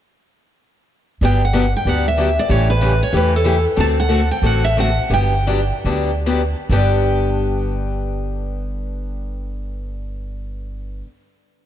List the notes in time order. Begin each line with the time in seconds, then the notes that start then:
1.21 G1 D3 F#3 B3 D4 G4 G5
1.45 F#5
1.53 D3 F#3 B3 D4 G4
1.76 G5
1.85 D2 D3 F#3 B3 D4 G4 F#5
2.08 E5
2.17 D3 F#3 B3 D4 G4
2.39 D5
2.49 A1 C#3 E3 A3 C#4 G4 C#5
2.70 B4
2.81 C#3 E3 A3 C#4 G4
3.03 C#5
3.12 E2 C#3 E3 A3 C#4 G4
3.17 B4
3.36 A4
3.44 C#3 E3 A3 C#4 G4
3.76 D2 D3 A3 C4 F#4 A4 A5
4.00 F#5
4.09 D3 A3 C4 F#4 A4
4.31 G5
4.42 A1 D3 A3 C4 F#4 A4
4.46 F#5
4.64 E5
4.77 D3 A3 C4 F#4 A4 F#5
5.10 G1 D3 F#3 B3 D4 G4 G5
5.47 D3 F#3 B3 D4 G4
5.84 D2 D3 F#3 B3 D4 G4
6.26 D3 F#3 B3 D4 G4
6.69 G1 G2 D3 B3 D4 G4 G5